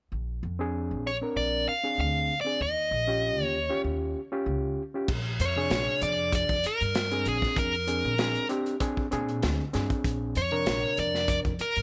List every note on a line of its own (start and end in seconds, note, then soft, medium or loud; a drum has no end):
0.12 0.41 A#1 medium
0.43 0.93 F2 medium
0.59 1.09 C4 medium
0.59 1.09 D4 medium
0.59 1.10 G#4 medium
0.91 1.20 A#1 medium
1.07 1.15 C#5 medium
1.22 1.71 C4 medium
1.22 1.71 D4 medium
1.22 1.72 A#4 medium
1.36 1.65 A#1 medium
1.36 1.68 D5 medium
1.69 1.99 F5 medium
1.83 2.33 C4 medium
1.83 2.33 D4 medium
1.83 2.33 G#4 medium
1.98 2.27 D2 medium
1.98 2.41 F5 medium
2.41 2.60 C4 medium
2.41 2.61 D5 medium
2.46 2.60 D4 soft
2.46 2.60 G#4 medium
2.60 2.89 D#2 medium
2.60 3.43 D#5 medium
2.91 3.38 A#1 medium
3.07 3.57 C#4 medium
3.07 3.57 F4 medium
3.07 3.58 G4 medium
3.38 3.68 D#2 medium
3.43 3.81 C#5 medium
3.69 4.19 C#4 medium
3.69 4.19 F4 medium
3.69 4.20 G4 medium
3.84 4.13 D#2 medium
4.32 4.81 C#4 medium
4.32 4.82 F4 medium
4.32 4.82 G4 medium
4.46 4.75 C#2 medium
4.94 5.08 C#4 medium
4.94 5.09 F4 medium
4.94 5.09 G4 medium
5.08 5.38 A#1 medium
5.08 kick loud
5.08 crash medium
5.40 5.69 F2 medium
5.40 6.02 C#5 medium
5.40 closed hi-hat medium
5.56 6.56 C3 medium
5.56 6.56 D4 medium
5.56 6.57 G#4 medium
5.70 5.86 A#1 medium
5.70 snare medium
5.70 closed hi-hat medium
6.01 6.46 F2 medium
6.01 6.31 D5 medium
6.01 closed hi-hat medium
6.32 6.66 D5 medium
6.32 kick medium
6.32 closed hi-hat medium
6.49 6.63 F2 medium
6.49 kick medium
6.49 closed hi-hat soft
6.64 7.28 A#4 medium
6.64 muted upright bass stroke soft
6.64 closed hi-hat medium
6.80 7.23 G2 medium
6.80 closed hi-hat soft
6.95 snare loud
6.95 closed hi-hat medium
7.11 7.74 C4 medium
7.11 7.74 D4 medium
7.11 7.74 G#4 medium
7.11 closed hi-hat soft
7.25 7.42 A#1 medium
7.25 7.58 G#4 medium
7.25 closed hi-hat medium
7.42 kick medium
7.42 snare soft
7.57 8.02 F2 medium
7.57 8.47 A#4 medium
7.57 kick loud
7.57 closed hi-hat medium
7.87 8.13 C4 medium
7.87 8.13 D4 medium
7.87 8.13 G#4 medium
7.87 closed hi-hat medium
8.05 8.34 A#1 medium
8.18 8.44 C4 medium
8.18 8.44 D4 medium
8.18 8.45 G#4 medium
8.18 snare medium
8.18 closed hi-hat medium
8.35 closed hi-hat soft
8.49 8.75 C4 medium
8.49 8.75 D4 medium
8.49 8.76 G4 medium
8.49 closed hi-hat medium
8.66 closed hi-hat soft
8.80 9.06 C4 medium
8.80 9.06 D4 medium
8.80 9.07 G#4 medium
8.80 kick medium
8.80 closed hi-hat medium
8.97 kick medium
9.11 9.41 A#2 medium
9.11 9.63 C4 medium
9.11 9.63 D4 medium
9.11 9.63 G#4 loud
9.11 closed hi-hat medium
9.29 closed hi-hat soft
9.43 9.59 D2 medium
9.43 snare medium
9.43 closed hi-hat medium
9.73 9.90 G2 medium
9.73 10.36 C4 medium
9.73 10.37 D4 medium
9.73 10.37 G#4 medium
9.73 snare soft
9.73 closed hi-hat medium
9.90 kick medium
9.90 closed hi-hat soft
10.04 10.34 A#1 medium
10.04 kick medium
10.04 closed hi-hat medium
10.35 10.65 F2 medium
10.35 10.99 C#5 loud
10.35 closed hi-hat medium
10.51 11.52 C3 medium
10.51 11.52 D4 medium
10.51 11.52 A#4 medium
10.66 10.82 A#1 medium
10.66 snare medium
10.66 closed hi-hat medium
10.97 11.43 F2 medium
10.97 11.28 D5 medium
10.97 closed hi-hat medium
11.15 snare soft
11.28 11.38 D5 loud
11.28 kick medium
11.28 closed hi-hat medium
11.45 11.59 F2 medium
11.45 kick medium
11.45 closed hi-hat soft
11.59 11.82 A#4 medium
11.59 muted upright bass stroke soft
11.59 closed hi-hat medium
11.76 11.82 G2 medium
11.76 closed hi-hat soft